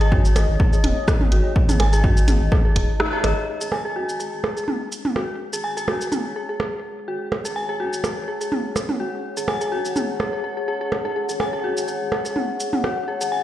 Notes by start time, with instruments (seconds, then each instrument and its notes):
Already playing: sub bass G#1, ambient pad G#4 C#5 D#5
0.01 synth bell G#4, closed hi-hat
0.12 sub bass G#2, synth bell F#4, kick
0.25 sub bass G#1, shaker
0.36 sub bass G#1, synth bell G#4, closed hi-hat, percussion blips, shaker
0.49 sub bass G#1
0.60 synth bell G#4, kick
0.73 synth bell G#4, shaker
0.84 sub bass D#1, closed hi-hat, mid tom
1.08 kick, cross-stick, percussion blips, shaker
1.21 mid tom
1.32 sub bass G#1, synth bell F#4, closed hi-hat
1.56 kick
1.69 sub bass G#1, synth bell G#4, closed hi-hat, mid tom, shaker
1.80 sub bass G#1, synth bell G#5, closed hi-hat, percussion blips
1.93 synth bell G#4, closed hi-hat, shaker
2.04 sub bass G#2, synth bell F#4, kick
2.17 sub bass G#1, shaker
2.28 sub bass G#1, synth bell G#4, closed hi-hat, mid tom, shaker
2.41 sub bass G#1
2.52 synth bell G#4, kick, percussion blips
2.65 synth bell G#4
2.76 sub bass D#1, synth bell G#4, kick, closed hi-hat
3.00 synth bell D#4, cross-stick
3.13 synth bell G#4
3.24 sub bass G#1, synth bell D#5, closed hi-hat, percussion blips
3.48 ambient pad G#4
3.61 sub bass G#1, synth bell G#4, shaker
3.72 sub bass G#1, synth bell G#5, percussion blips
3.77 ambient pad C#5
3.85 synth bell G#4
3.92 sub bass G#2, synth bell F#4, ambient pad F#5
4.09 sub bass G#1, shaker
4.20 sub bass G#1, synth bell G#4, shaker
4.33 sub bass G#1
4.44 synth bell G#4, percussion blips
4.57 synth bell G#4, shaker
4.68 sub bass D#1, mid tom
4.92 shaker
5.05 mid tom
5.16 sub bass G#1, synth bell F#4, percussion blips
5.53 sub bass G#1, synth bell G#4, shaker
5.64 sub bass G#1, synth bell G#5
5.77 synth bell G#4, shaker
5.88 sub bass G#2, synth bell F#4, percussion blips
6.01 sub bass G#1, shaker
6.12 sub bass G#1, synth bell G#4, mid tom, shaker
6.25 sub bass G#1
6.36 synth bell G#4
6.49 synth bell G#4
6.60 sub bass D#1, percussion blips
7.08 sub bass G#1, synth bell F#4
7.32 percussion blips
7.45 sub bass G#1, synth bell G#4, shaker
7.56 sub bass G#1, synth bell G#5
7.69 synth bell G#4
7.80 sub bass G#2, synth bell F#4
7.93 sub bass G#1, shaker
8.04 sub bass G#1, synth bell G#4, percussion blips, shaker
8.17 sub bass G#1
8.28 synth bell G#4
8.41 synth bell G#4, shaker
8.52 sub bass D#1, mid tom
8.76 percussion blips, shaker
8.89 mid tom
9.00 sub bass G#1, synth bell F#4
9.37 sub bass G#1, synth bell G#4, shaker
9.48 sub bass G#1, synth bell G#5, percussion blips
9.61 synth bell G#4, shaker
9.72 sub bass G#2, synth bell F#4
9.85 sub bass G#1, shaker
9.96 sub bass G#1, synth bell G#4, mid tom, shaker
10.09 sub bass G#1
10.20 synth bell G#4, percussion blips
10.33 synth bell G#4
10.44 synth bell G#4
10.57 synth bell G#4
10.68 synth bell G#4
10.81 synth bell G#4
10.92 synth bell G#4, percussion blips
11.05 sub bass G#2, synth bell G#4
11.16 synth bell G#4
11.29 sub bass G#1, synth bell G#4, shaker
11.40 sub bass G#1, synth bell G#5, percussion blips
11.53 synth bell G#4
11.64 sub bass G#2, synth bell F#4
11.77 sub bass G#1, shaker
11.88 sub bass G#1, synth bell G#4, shaker
12.01 sub bass G#1
12.12 synth bell G#4, percussion blips
12.25 synth bell G#4, shaker
12.36 sub bass D#1, mid tom
12.60 shaker
12.73 mid tom
12.84 sub bass G#1, synth bell F#4, percussion blips
13.08 synth bell G#4
13.21 sub bass G#1, synth bell G#4, shaker
13.32 sub bass G#1, synth bell G#5